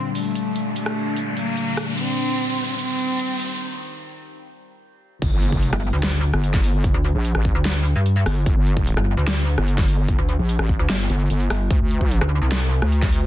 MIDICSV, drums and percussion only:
0, 0, Header, 1, 2, 480
1, 0, Start_track
1, 0, Key_signature, -2, "minor"
1, 0, Tempo, 405405
1, 420, Time_signature, 4, 2, 24, 8
1, 15706, End_track
2, 0, Start_track
2, 0, Title_t, "Drums"
2, 181, Note_on_c, 9, 46, 91
2, 299, Note_off_c, 9, 46, 0
2, 420, Note_on_c, 9, 42, 83
2, 538, Note_off_c, 9, 42, 0
2, 660, Note_on_c, 9, 42, 56
2, 778, Note_off_c, 9, 42, 0
2, 900, Note_on_c, 9, 42, 78
2, 1018, Note_off_c, 9, 42, 0
2, 1021, Note_on_c, 9, 37, 50
2, 1139, Note_off_c, 9, 37, 0
2, 1380, Note_on_c, 9, 42, 76
2, 1498, Note_off_c, 9, 42, 0
2, 1620, Note_on_c, 9, 42, 56
2, 1738, Note_off_c, 9, 42, 0
2, 1861, Note_on_c, 9, 42, 78
2, 1979, Note_off_c, 9, 42, 0
2, 2100, Note_on_c, 9, 37, 69
2, 2100, Note_on_c, 9, 46, 93
2, 2218, Note_off_c, 9, 37, 0
2, 2218, Note_off_c, 9, 46, 0
2, 2340, Note_on_c, 9, 42, 76
2, 2458, Note_off_c, 9, 42, 0
2, 2580, Note_on_c, 9, 42, 53
2, 2698, Note_off_c, 9, 42, 0
2, 2819, Note_on_c, 9, 42, 78
2, 2938, Note_off_c, 9, 42, 0
2, 3299, Note_on_c, 9, 42, 82
2, 3418, Note_off_c, 9, 42, 0
2, 3540, Note_on_c, 9, 42, 56
2, 3658, Note_off_c, 9, 42, 0
2, 3779, Note_on_c, 9, 42, 81
2, 3898, Note_off_c, 9, 42, 0
2, 4020, Note_on_c, 9, 46, 88
2, 4138, Note_off_c, 9, 46, 0
2, 6181, Note_on_c, 9, 36, 125
2, 6181, Note_on_c, 9, 42, 80
2, 6181, Note_on_c, 9, 49, 104
2, 6299, Note_off_c, 9, 36, 0
2, 6300, Note_off_c, 9, 42, 0
2, 6300, Note_off_c, 9, 49, 0
2, 6422, Note_on_c, 9, 42, 58
2, 6540, Note_off_c, 9, 42, 0
2, 6541, Note_on_c, 9, 36, 64
2, 6659, Note_off_c, 9, 36, 0
2, 6661, Note_on_c, 9, 42, 82
2, 6780, Note_off_c, 9, 42, 0
2, 6782, Note_on_c, 9, 37, 51
2, 6900, Note_off_c, 9, 37, 0
2, 7142, Note_on_c, 9, 38, 114
2, 7142, Note_on_c, 9, 42, 78
2, 7260, Note_off_c, 9, 38, 0
2, 7260, Note_off_c, 9, 42, 0
2, 7382, Note_on_c, 9, 42, 58
2, 7500, Note_off_c, 9, 42, 0
2, 7501, Note_on_c, 9, 37, 51
2, 7620, Note_off_c, 9, 37, 0
2, 7621, Note_on_c, 9, 42, 83
2, 7739, Note_off_c, 9, 42, 0
2, 7741, Note_on_c, 9, 36, 109
2, 7742, Note_on_c, 9, 38, 38
2, 7742, Note_on_c, 9, 42, 40
2, 7859, Note_off_c, 9, 36, 0
2, 7860, Note_off_c, 9, 38, 0
2, 7860, Note_off_c, 9, 42, 0
2, 7862, Note_on_c, 9, 46, 94
2, 7980, Note_off_c, 9, 46, 0
2, 8101, Note_on_c, 9, 36, 127
2, 8101, Note_on_c, 9, 42, 82
2, 8219, Note_off_c, 9, 36, 0
2, 8220, Note_off_c, 9, 42, 0
2, 8342, Note_on_c, 9, 42, 56
2, 8460, Note_off_c, 9, 42, 0
2, 8581, Note_on_c, 9, 42, 82
2, 8700, Note_off_c, 9, 42, 0
2, 8701, Note_on_c, 9, 37, 51
2, 8820, Note_off_c, 9, 37, 0
2, 8820, Note_on_c, 9, 36, 64
2, 8939, Note_off_c, 9, 36, 0
2, 9061, Note_on_c, 9, 38, 118
2, 9061, Note_on_c, 9, 42, 80
2, 9179, Note_off_c, 9, 38, 0
2, 9179, Note_off_c, 9, 42, 0
2, 9301, Note_on_c, 9, 42, 61
2, 9420, Note_off_c, 9, 42, 0
2, 9541, Note_on_c, 9, 42, 81
2, 9660, Note_off_c, 9, 42, 0
2, 9661, Note_on_c, 9, 42, 39
2, 9780, Note_off_c, 9, 42, 0
2, 9781, Note_on_c, 9, 37, 74
2, 9781, Note_on_c, 9, 46, 86
2, 9900, Note_off_c, 9, 37, 0
2, 9900, Note_off_c, 9, 46, 0
2, 10020, Note_on_c, 9, 36, 127
2, 10021, Note_on_c, 9, 42, 81
2, 10139, Note_off_c, 9, 36, 0
2, 10139, Note_off_c, 9, 42, 0
2, 10261, Note_on_c, 9, 42, 56
2, 10380, Note_off_c, 9, 42, 0
2, 10381, Note_on_c, 9, 36, 67
2, 10499, Note_off_c, 9, 36, 0
2, 10501, Note_on_c, 9, 42, 84
2, 10620, Note_off_c, 9, 42, 0
2, 10622, Note_on_c, 9, 37, 49
2, 10740, Note_off_c, 9, 37, 0
2, 10981, Note_on_c, 9, 38, 123
2, 10981, Note_on_c, 9, 42, 82
2, 11100, Note_off_c, 9, 38, 0
2, 11100, Note_off_c, 9, 42, 0
2, 11222, Note_on_c, 9, 42, 55
2, 11340, Note_off_c, 9, 42, 0
2, 11341, Note_on_c, 9, 37, 54
2, 11460, Note_off_c, 9, 37, 0
2, 11461, Note_on_c, 9, 42, 78
2, 11579, Note_off_c, 9, 42, 0
2, 11580, Note_on_c, 9, 36, 111
2, 11581, Note_on_c, 9, 38, 39
2, 11581, Note_on_c, 9, 42, 38
2, 11699, Note_off_c, 9, 36, 0
2, 11699, Note_off_c, 9, 38, 0
2, 11699, Note_off_c, 9, 42, 0
2, 11700, Note_on_c, 9, 46, 88
2, 11818, Note_off_c, 9, 46, 0
2, 11940, Note_on_c, 9, 36, 125
2, 11940, Note_on_c, 9, 42, 79
2, 12058, Note_off_c, 9, 42, 0
2, 12059, Note_off_c, 9, 36, 0
2, 12180, Note_on_c, 9, 42, 53
2, 12298, Note_off_c, 9, 42, 0
2, 12420, Note_on_c, 9, 42, 79
2, 12538, Note_off_c, 9, 42, 0
2, 12541, Note_on_c, 9, 37, 54
2, 12659, Note_off_c, 9, 37, 0
2, 12660, Note_on_c, 9, 36, 63
2, 12778, Note_off_c, 9, 36, 0
2, 12900, Note_on_c, 9, 38, 112
2, 12900, Note_on_c, 9, 42, 71
2, 13019, Note_off_c, 9, 38, 0
2, 13019, Note_off_c, 9, 42, 0
2, 13141, Note_on_c, 9, 42, 58
2, 13259, Note_off_c, 9, 42, 0
2, 13380, Note_on_c, 9, 42, 77
2, 13499, Note_off_c, 9, 42, 0
2, 13500, Note_on_c, 9, 42, 38
2, 13619, Note_off_c, 9, 42, 0
2, 13621, Note_on_c, 9, 37, 80
2, 13621, Note_on_c, 9, 46, 86
2, 13739, Note_off_c, 9, 37, 0
2, 13739, Note_off_c, 9, 46, 0
2, 13859, Note_on_c, 9, 36, 123
2, 13861, Note_on_c, 9, 42, 79
2, 13978, Note_off_c, 9, 36, 0
2, 13979, Note_off_c, 9, 42, 0
2, 14101, Note_on_c, 9, 42, 52
2, 14219, Note_off_c, 9, 42, 0
2, 14220, Note_on_c, 9, 36, 61
2, 14338, Note_off_c, 9, 36, 0
2, 14341, Note_on_c, 9, 42, 77
2, 14459, Note_off_c, 9, 42, 0
2, 14461, Note_on_c, 9, 37, 55
2, 14579, Note_off_c, 9, 37, 0
2, 14821, Note_on_c, 9, 38, 115
2, 14821, Note_on_c, 9, 42, 77
2, 14939, Note_off_c, 9, 38, 0
2, 14939, Note_off_c, 9, 42, 0
2, 15061, Note_on_c, 9, 42, 53
2, 15179, Note_off_c, 9, 42, 0
2, 15181, Note_on_c, 9, 37, 55
2, 15299, Note_off_c, 9, 37, 0
2, 15300, Note_on_c, 9, 42, 73
2, 15419, Note_off_c, 9, 42, 0
2, 15420, Note_on_c, 9, 36, 112
2, 15421, Note_on_c, 9, 38, 37
2, 15421, Note_on_c, 9, 42, 37
2, 15538, Note_off_c, 9, 36, 0
2, 15539, Note_off_c, 9, 38, 0
2, 15539, Note_off_c, 9, 42, 0
2, 15540, Note_on_c, 9, 46, 89
2, 15659, Note_off_c, 9, 46, 0
2, 15706, End_track
0, 0, End_of_file